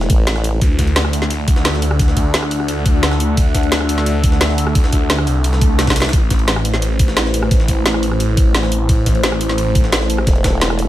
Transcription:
0.00 0.58 A3 medium
0.00 0.58 E4 medium
0.00 0.57 B4 medium
0.00 0.58 C5 medium
0.00 snare medium
0.10 0.60 A1 medium
0.10 kick loud
0.10 closed hi-hat medium
0.10 ride medium
0.27 snare loud
0.27 closed hi-hat medium
0.27 ride medium
0.36 cross-stick soft
0.36 snare soft
0.44 closed hi-hat medium
0.44 ride medium
0.61 1.98 D2 loud
0.61 6.09 D4 medium
0.61 6.09 A4 medium
0.61 6.09 E5 medium
0.61 6.09 F#5 medium
0.61 kick loud
0.61 closed hi-hat medium
0.61 ride medium
0.79 kick medium
0.79 snare soft
0.79 closed hi-hat medium
0.79 ride medium
0.87 ride soft
0.96 snare loud
0.96 closed hi-hat medium
0.96 ride medium
1.05 cross-stick medium
1.13 closed hi-hat medium
1.13 ride medium
1.22 snare soft
1.22 ride soft
1.30 closed hi-hat medium
1.30 ride medium
1.48 kick loud
1.48 closed hi-hat medium
1.48 ride medium
1.56 snare medium
1.65 snare loud
1.65 closed hi-hat medium
1.65 ride loud
1.74 snare soft
1.82 closed hi-hat medium
1.82 ride medium
1.91 cross-stick medium
1.99 3.36 D2 loud
1.99 kick loud
1.99 closed hi-hat medium
1.99 ride medium
2.08 snare soft
2.17 kick medium
2.17 closed hi-hat medium
2.17 ride medium
2.34 snare loud
2.34 closed hi-hat medium
2.34 ride medium
2.43 cross-stick medium
2.51 open hi-hat medium
2.51 ride medium
2.60 cross-stick soft
2.68 closed hi-hat medium
2.68 ride medium
2.86 kick loud
2.86 closed hi-hat medium
2.86 ride medium
3.03 snare loud
3.03 closed hi-hat medium
3.03 ride medium
3.11 cross-stick soft
3.11 snare medium
3.20 closed hi-hat medium
3.37 4.74 D2 loud
3.37 kick loud
3.37 closed hi-hat medium
3.37 ride medium
3.55 kick medium
3.55 snare soft
3.55 closed hi-hat medium
3.55 ride medium
3.63 ride soft
3.72 snare loud
3.72 closed hi-hat medium
3.72 ride medium
3.81 cross-stick medium
3.89 closed hi-hat loud
3.89 ride medium
3.98 snare soft
3.98 ride soft
4.06 closed hi-hat medium
4.06 ride medium
4.24 kick loud
4.24 closed hi-hat medium
4.24 ride medium
4.32 snare soft
4.41 snare loud
4.41 closed hi-hat medium
4.41 ride medium
4.49 snare soft
4.58 closed hi-hat medium
4.58 ride medium
4.67 cross-stick medium
4.75 5.26 D2 loud
4.75 kick loud
4.75 closed hi-hat medium
4.75 ride medium
4.84 snare soft
4.92 kick medium
4.92 closed hi-hat medium
4.92 ride medium
5.10 snare loud
5.10 closed hi-hat medium
5.10 ride medium
5.18 cross-stick medium
5.27 6.12 C2 loud
5.27 open hi-hat medium
5.27 ride medium
5.44 closed hi-hat medium
5.44 ride medium
5.44 swell medium
5.53 snare medium
5.61 kick loud
5.61 closed hi-hat loud
5.61 ride medium
5.79 snare medium
5.79 snare loud
5.79 closed hi-hat medium
5.79 ride medium
5.87 kick medium
5.87 snare medium
5.87 ride medium
5.90 snare medium
5.90 ride medium
5.96 snare medium
5.96 closed hi-hat loud
5.96 ride medium
6.00 snare medium
6.00 snare loud
6.00 ride medium
6.05 snare medium
6.05 ride medium
6.09 snare medium
6.09 ride medium
6.13 7.50 A1 loud
6.13 10.88 A3 medium
6.13 10.88 E4 medium
6.13 8.86 B4 medium
6.13 10.88 C5 medium
6.13 kick loud
6.13 closed hi-hat medium
6.13 ride medium
6.30 kick medium
6.30 snare soft
6.30 closed hi-hat medium
6.30 ride medium
6.39 ride soft
6.48 snare loud
6.48 closed hi-hat medium
6.48 ride medium
6.56 cross-stick medium
6.65 closed hi-hat loud
6.65 ride medium
6.74 snare soft
6.74 ride soft
6.82 closed hi-hat medium
6.82 ride medium
6.99 kick loud
6.99 closed hi-hat loud
6.99 ride medium
7.08 snare soft
7.17 snare loud
7.17 closed hi-hat medium
7.17 ride medium
7.25 snare soft
7.34 closed hi-hat loud
7.34 ride medium
7.43 cross-stick medium
7.51 8.88 A1 loud
7.51 kick loud
7.51 closed hi-hat medium
7.51 ride medium
7.60 snare soft
7.68 kick medium
7.68 closed hi-hat medium
7.68 ride medium
7.86 snare loud
7.86 closed hi-hat medium
7.86 ride medium
7.94 cross-stick medium
8.03 open hi-hat medium
8.03 ride medium
8.11 cross-stick soft
8.20 closed hi-hat medium
8.20 ride medium
8.37 kick loud
8.37 closed hi-hat medium
8.37 ride medium
8.55 snare loud
8.55 closed hi-hat medium
8.55 ride medium
8.63 cross-stick soft
8.63 snare medium
8.72 closed hi-hat loud
8.89 10.26 A1 loud
8.89 10.88 A4 medium
8.89 kick loud
8.89 closed hi-hat medium
8.89 ride medium
9.06 kick medium
9.06 snare soft
9.06 closed hi-hat medium
9.06 ride medium
9.15 ride soft
9.23 snare loud
9.23 closed hi-hat medium
9.23 ride medium
9.32 cross-stick medium
9.41 closed hi-hat medium
9.41 ride medium
9.49 snare soft
9.49 ride soft
9.58 closed hi-hat medium
9.58 ride medium
9.75 kick loud
9.75 closed hi-hat medium
9.75 ride medium
9.84 snare soft
9.92 snare loud
9.92 closed hi-hat medium
9.92 ride medium
10.01 snare soft
10.10 closed hi-hat medium
10.10 ride medium
10.18 cross-stick medium
10.27 10.60 E1 loud
10.27 kick loud
10.27 snare soft
10.27 closed hi-hat medium
10.27 ride medium
10.36 ride soft
10.44 kick medium
10.44 snare loud
10.44 closed hi-hat medium
10.44 ride medium
10.61 10.88 E1 loud
10.61 snare loud
10.61 closed hi-hat medium
10.61 ride medium
10.70 cross-stick medium
10.79 open hi-hat medium
10.79 ride medium

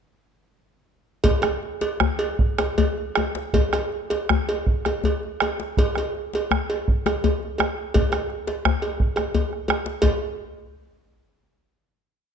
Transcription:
1.24 bombo low medium
1.24 cowbell medium
1.24 djembe bass medium
1.42 bombo rim medium
1.42 cowbell soft
1.42 djembe slap soft
1.42 djembe tone soft
1.63 djembe slap soft
1.81 cowbell soft
1.81 djembe slap soft
2.00 bombo rim medium
2.00 djembe tone medium
2.00 djembe bass medium
2.19 cowbell soft
2.39 bombo low medium
2.58 bombo rim medium
2.58 cowbell soft
2.58 djembe slap medium
2.58 djembe tone medium
2.78 cowbell medium
2.78 djembe bass medium
2.98 djembe slap soft
3.15 bombo rim medium
3.15 cowbell soft
3.15 djembe tone medium
3.35 bombo rim soft
3.35 djembe slap medium
3.53 bombo low medium
3.53 cowbell medium
3.53 djembe bass medium
3.73 bombo rim medium
3.73 cowbell medium
3.73 djembe slap soft
3.73 djembe tone medium
3.92 djembe slap soft
4.10 cowbell soft
4.10 djembe slap soft
4.29 bombo rim medium
4.29 djembe tone medium
4.29 djembe bass medium
4.49 cowbell soft
4.67 bombo low medium
4.85 bombo rim medium
4.85 cowbell soft
4.85 djembe slap soft
4.85 djembe tone medium
5.04 cowbell soft
5.04 djembe bass medium
5.23 djembe slap soft
5.40 bombo rim medium
5.40 cowbell soft
5.40 djembe tone medium
5.60 bombo rim soft
5.60 djembe slap soft
5.77 bombo low medium
5.77 cowbell medium
5.77 djembe bass medium
5.95 bombo rim medium
5.95 cowbell soft
5.95 djembe slap soft
5.95 djembe tone soft
6.15 djembe slap soft
6.33 cowbell soft
6.33 djembe slap soft
6.51 bombo rim medium
6.51 djembe bass medium
6.70 cowbell soft
6.88 bombo low medium
7.06 bombo rim medium
7.06 cowbell soft
7.06 djembe slap medium
7.06 djembe tone medium
7.24 cowbell soft
7.24 djembe bass medium
7.43 djembe slap soft
7.58 bombo rim medium
7.58 cowbell soft
7.58 djembe tone medium
7.78 bombo rim soft
7.94 bombo rim soft
7.94 bombo low medium
7.94 cowbell medium
7.94 djembe bass medium
8.12 bombo rim medium
8.12 cowbell soft
8.12 djembe slap soft
8.12 djembe tone medium
8.30 bombo rim soft
8.30 djembe slap soft
8.47 cowbell soft
8.47 djembe slap medium
8.65 bombo rim medium
8.65 djembe tone medium
8.65 djembe bass medium
8.82 cowbell soft
8.82 djembe slap soft
9.00 bombo low medium
9.16 bombo rim medium
9.16 cowbell soft
9.16 djembe tone medium
9.35 cowbell soft
9.35 djembe bass medium
9.53 bombo rim soft
9.68 bombo rim medium
9.68 cowbell soft
9.68 djembe tone medium
9.86 bombo rim soft
9.86 djembe slap soft
10.02 bombo low medium
10.02 cowbell medium
10.02 djembe bass medium

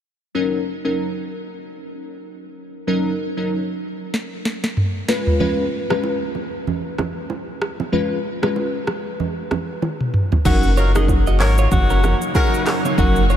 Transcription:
0.35 0.59 F#3 medium
0.35 0.59 C#4 medium
0.35 0.59 D#4 medium
0.35 0.59 A#4 medium
0.85 1.06 F#3 medium
0.85 1.06 C#4 medium
0.85 1.07 D#4 medium
0.85 1.07 A#4 medium
2.87 3.12 F#3 medium
2.87 3.12 C#4 medium
2.87 3.12 D#4 medium
2.87 3.12 A#4 loud
3.37 3.59 F#3 medium
3.37 3.59 C#4 medium
3.37 3.59 D#4 medium
3.37 3.59 A#4 medium
4.14 snare medium
4.45 snare medium
4.64 snare medium
4.77 mid tom medium
5.08 5.38 G#3 medium
5.08 5.38 C#4 medium
5.08 5.38 F4 medium
5.08 5.38 B4 loud
5.08 snare loud
5.27 floor tom medium
5.40 5.64 G#3 medium
5.40 5.64 C#4 medium
5.40 5.65 F4 medium
5.40 5.65 B4 loud
5.40 low conga medium
5.90 6.11 G#3 medium
5.90 6.12 C#4 medium
5.90 6.12 F4 medium
5.90 6.12 B4 medium
5.90 cross-stick loud
5.90 low bongo medium
6.04 high bongo medium
6.35 low bongo soft
6.67 low conga medium
6.98 cross-stick medium
6.98 high bongo medium
6.98 low bongo medium
6.98 low conga medium
7.30 high bongo medium
7.62 cross-stick loud
7.80 high bongo soft
7.80 low bongo medium
7.92 8.17 G#3 medium
7.92 8.17 C#4 medium
7.92 8.17 F4 medium
7.92 8.17 B4 loud
7.92 low conga medium
8.42 8.64 G#3 medium
8.42 8.64 C#4 medium
8.42 8.64 F4 medium
8.42 8.64 B4 medium
8.42 cross-stick loud
8.42 low bongo medium
8.56 high bongo medium
8.87 cross-stick loud
8.87 low bongo soft
9.20 low conga medium
9.51 cross-stick medium
9.51 high bongo medium
9.51 low bongo medium
9.51 low conga medium
9.82 high tom soft
9.82 high bongo medium
10.00 mid tom medium
10.14 mid tom medium
10.32 floor tom medium
10.32 high bongo soft
10.32 low bongo medium
10.45 11.42 F#1 loud
10.45 13.37 C#3 medium
10.45 10.70 F#3 loud
10.45 13.37 F#3 medium
10.45 13.37 A#3 medium
10.45 10.70 C#4 medium
10.45 10.70 D#4 medium
10.45 13.37 D#4 medium
10.45 10.72 F#4 loud
10.45 10.70 A#4 loud
10.45 kick loud
10.45 crash loud
10.45 low conga medium
10.45 shaker loud
10.63 shaker soft
10.77 10.92 F#3 medium
10.77 10.92 D#4 medium
10.77 10.91 F4 medium
10.77 10.92 A#4 medium
10.77 10.90 C#5 medium
10.77 shaker medium
10.95 11.17 F#3 medium
10.95 11.17 C#4 medium
10.95 11.17 D#4 medium
10.95 11.06 F#4 medium
10.95 11.07 G#4 medium
10.95 11.17 A#4 medium
10.95 11.05 D#5 medium
10.95 cross-stick loud
10.95 low bongo medium
10.95 shaker loud
11.08 kick medium
11.08 high bongo medium
11.08 shaker medium
11.27 11.37 F#4 medium
11.27 11.37 D#5 medium
11.27 shaker soft
11.40 11.67 G#1 loud
11.40 11.65 A#3 medium
11.40 11.65 F#4 medium
11.40 11.56 A#4 medium
11.40 11.65 C#5 loud
11.40 clap loud
11.40 open hi-hat medium
11.40 low bongo medium
11.40 shaker medium
11.58 11.69 F4 medium
11.58 11.68 C#5 medium
11.58 shaker loud
11.71 12.14 F#1 loud
11.71 12.19 F#4 loud
11.71 kick loud
11.71 low conga medium
11.71 shaker medium
11.90 12.00 C#4 medium
11.90 12.00 A#4 medium
11.90 shaker medium
12.04 12.17 C#4 medium
12.04 12.17 A#4 medium
12.04 cross-stick medium
12.04 high bongo medium
12.04 low bongo medium
12.04 low conga medium
12.04 shaker medium
12.22 shaker medium
12.35 12.82 F#3 medium
12.35 12.49 C#4 medium
12.35 12.82 D#4 medium
12.35 12.82 F#4 medium
12.35 12.48 G#4 medium
12.35 12.82 A#4 loud
12.35 kick medium
12.35 high bongo medium
12.35 shaker medium
12.54 shaker medium
12.66 12.80 C#4 medium
12.66 12.80 A#4 medium
12.66 cross-stick loud
12.66 clap loud
12.66 open hi-hat medium
12.66 shaker medium
12.85 12.95 F4 medium
12.85 12.95 C#5 medium
12.85 low bongo medium
12.85 shaker medium
12.98 13.37 F#1 loud
12.98 13.22 F#3 medium
12.98 13.22 C#4 medium
12.98 13.22 D#4 medium
12.98 13.25 F#4 loud
12.98 13.23 A#4 loud
12.98 kick loud
12.98 low conga medium
12.98 shaker medium
13.16 shaker medium
13.30 13.37 F4 medium
13.30 13.37 C#5 medium
13.30 shaker medium

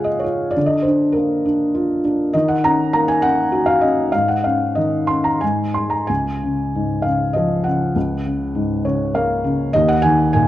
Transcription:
0.00 0.52 C#3 soft
0.00 0.52 G#3 soft
0.00 0.24 F4 soft
0.00 0.54 G#4 soft
0.00 0.58 F5 medium
0.00 0.58 F#5 medium
0.00 0.58 G#5 medium
0.04 0.23 D#5 medium
0.19 0.55 C#5 medium
0.24 0.55 F4 soft
0.51 0.69 D5 medium
0.56 2.30 D3 medium
0.66 0.83 D#5 medium
0.82 1.15 C5 medium
0.87 1.44 D4 soft
1.12 1.99 A#4 medium
1.17 2.31 A#3 soft
1.45 2.03 D4 soft
1.75 2.32 F4 medium
2.05 2.33 D4 soft
2.33 4.09 D#3 medium
2.33 2.49 D#5 medium
2.48 2.64 F#5 medium
2.64 3.22 C#4 medium
2.64 2.92 A#5 medium
2.93 4.10 A#3 soft
2.93 3.07 A#5 medium
3.08 3.23 G#5 medium
3.22 3.80 C#4 soft
3.22 3.68 F#5 medium
3.52 4.11 F#4 medium
3.66 3.82 F5 medium
3.81 4.12 C#4 soft
3.81 4.11 D#5 medium
4.12 5.38 G#2 medium
4.12 4.27 F5 medium
4.28 4.45 F#5 medium
4.44 5.08 C#4 soft
4.44 4.77 F5 medium
4.75 5.40 D#3 soft
4.75 5.06 D#5 medium
5.07 5.42 C#4 soft
5.07 5.25 C6 medium
5.24 5.40 A#5 medium
5.41 6.08 G#2 soft
5.41 5.73 G#5 medium
5.74 6.09 G#3 soft
5.74 5.92 C6 medium
5.90 6.08 A#5 medium
6.07 7.92 C#2 soft
6.07 7.07 G#5 medium
6.43 7.04 C#3 soft
6.75 7.93 G#2 soft
7.02 7.65 C#3 soft
7.02 7.35 F5 medium
7.33 7.94 F3 soft
7.33 7.65 D#5 medium
7.64 7.95 C#3 soft
7.64 8.21 F#5 medium
7.96 9.70 C#2 medium
8.26 8.83 C#3 soft
8.55 9.70 G#2 soft
8.85 9.43 C#3 soft
8.85 9.12 C#5 medium
9.14 9.72 A#3 medium
9.14 9.70 F5 medium
9.44 9.73 C#3 medium
9.73 10.48 D#2 medium
9.73 9.89 D#5 loud
9.88 10.04 F#5 medium
10.02 10.48 D#3 medium
10.02 10.31 G#5 medium
10.33 10.48 A#2 medium
10.33 10.48 G#5 medium

